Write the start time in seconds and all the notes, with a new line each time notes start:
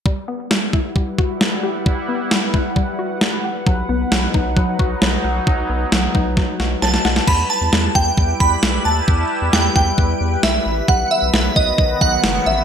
0.06 G3 E4 B4 F#5, kick
0.28 B3
0.51 G3, snare
0.73 E4, kick
0.96 G3, kick
1.18 F#4, kick
1.41 G3, snare
1.63 G4
1.86 G3, kick
2.09 B3
2.31 G3, snare
2.54 E4, kick
2.76 G3, kick
2.99 F#4
3.21 G3, snare
3.44 G4
3.66 B1 F#3 D#4, kick
3.89 B1 B3
4.12 B1 F#3, snare
4.34 B1 D#4, kick
4.57 F#3, kick
4.79 B1 F#4, kick
5.02 B1 F#3, snare
5.24 B1 F#5
5.47 B1 F#3, kick
5.69 B1 B3
5.92 B1 F#3, snare
6.15 B1 D#4, kick
6.37 F#3, kick, snare
6.60 B1 F#4, snare
6.82 B1 F#3 A5, snare
6.94 snare
7.05 B1 F#5, snare
7.16 snare
7.27 E2 G3 E4 G4 B4 B5, kick, crash
7.50 A5
7.61 E2
7.73 E2, snare
7.95 E2 G5, kick
8.17 E2, kick
8.40 E2 B5, kick
8.63 B1, snare
8.85 D#2 A5
9.08 E2, kick
9.42 E2
9.53 E2 G5, snare
9.76 E2 G5, kick
9.98 E2, kick
10.21 E2
10.43 B1 E5, snare
10.66 A1
10.88 B1 D#3 F#3 B3 F#5, kick
11.11 E5
11.22 B1
11.33 B1, snare
11.56 B1 D#5, kick
11.78 B1, kick
12.01 B1 F#5, kick
12.24 F#1, snare
12.46 A1 E5